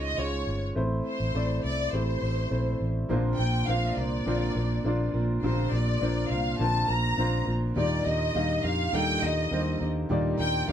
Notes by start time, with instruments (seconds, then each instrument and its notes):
Already playing: fingered electric bass C#2, upright piano G#2 G#3 C#4 F4 C5 C#5
0.05 violin section D#5
0.17 fingered electric bass C#2, upright piano G#3 C#4 F4 C#5, violin section C#5
0.47 fingered electric bass G1
0.75 fingered electric bass A1, upright piano A3 C4 E4 C5
1.06 violin section C5
1.20 fingered electric bass A1
1.34 fingered electric bass A1, upright piano A3 C4 E4 D5
1.64 fingered electric bass C2, violin section D5
1.93 fingered electric bass A1, upright piano A3 C4 E4 G4, violin section C5
2.22 fingered electric bass A1
2.51 fingered electric bass A#1, upright piano A3 C4 E4 C5
2.80 fingered electric bass A1
3.09 fingered electric bass A#1, steel-string acoustic guitar A#2 D3 A#3 C4 F4 A#4, upright piano A#2 F3 A#3 D4 F4 C5
3.38 fingered electric bass A#1, steel-string acoustic guitar A#3 C4 A#4, violin section G5
3.67 fingered electric bass A#1, steel-string acoustic guitar A#3 C4 F4 A#4, upright piano A#3 D4 F4 C5, violin section F5
3.97 fingered electric bass C2, steel-string acoustic guitar A#3 C4 F4 A#4, violin section D5
4.26 fingered electric bass A#1, steel-string acoustic guitar A#2 D3 A#3 C4 F4 A#4, upright piano A#3 D4 F4 C5
4.55 fingered electric bass A#1, steel-string acoustic guitar A#3 C4 F4 A#4
4.84 fingered electric bass A#1, upright piano A#3 D4 F4 D5, steel-string acoustic guitar A#3 C4 F4 A#4
5.13 fingered electric bass A#1, steel-string acoustic guitar A#3 C4 F4 A#4
5.42 fingered electric bass A#1, steel-string acoustic guitar A#2 D3 A#3 C4 F4 A#4, upright piano A#2 F3 A#3 D4 F4 G4, violin section C5
5.72 fingered electric bass A#1, steel-string acoustic guitar A#3 C4 F4 A#4, violin section D5
6.01 fingered electric bass A#1, steel-string acoustic guitar A#3 C4 F4 A#4, upright piano A#3 D4 F4 C5
6.30 fingered electric bass C2, steel-string acoustic guitar A#3 C4 F4 A#4, violin section F5
6.59 fingered electric bass A#1, steel-string acoustic guitar A#2 D3 A#3 C4 F4 A#4, upright piano A#3 D4 F4 C5, violin section A5
6.88 fingered electric bass A#1, steel-string acoustic guitar A#3 C4 F4 A#4, violin section A#5
7.17 fingered electric bass A#1, upright piano A#3 D4 F4 C5, steel-string acoustic guitar A#3 C4 F4 A#4
7.46 fingered electric bass A#1, steel-string acoustic guitar A#3 C4 F4 A#4
7.75 fingered electric bass D#2, upright piano A#2 A#3 D#4 G4 D5, steel-string acoustic guitar D#3 G3 D4 G4 A#4, violin section D5
8.05 fingered electric bass D#2, steel-string acoustic guitar D4 G4 A#4, violin section D#5
8.34 fingered electric bass D#2, steel-string acoustic guitar G3 D4 G4 A#4, upright piano A#3 D#4 G4 F5
8.63 fingered electric bass F2, steel-string acoustic guitar D4 G4 A#4, violin section F5
8.92 fingered electric bass D#2, steel-string acoustic guitar D#3 G3 D4 G4 A#4, upright piano A#3 D#4 G4 A4, violin section G5
9.22 fingered electric bass D#2, steel-string acoustic guitar D4 G4 A#4, violin section D#5
9.51 fingered electric bass D#2, steel-string acoustic guitar G3 D4 G4 A#4, upright piano A#3 D#4 G4 C5
9.80 fingered electric bass D#2, steel-string acoustic guitar D4 G4 A#4
10.09 fingered electric bass D#2, upright piano A#2 A#3 D#4 G4 D5, steel-string acoustic guitar D#3 G3 D4 G4 A#4
10.37 fingered electric bass D#2, steel-string acoustic guitar D4 G4 A#4, violin section G5
10.67 fingered electric bass D#2, steel-string acoustic guitar G3 D4, upright piano A#3 D#4 G4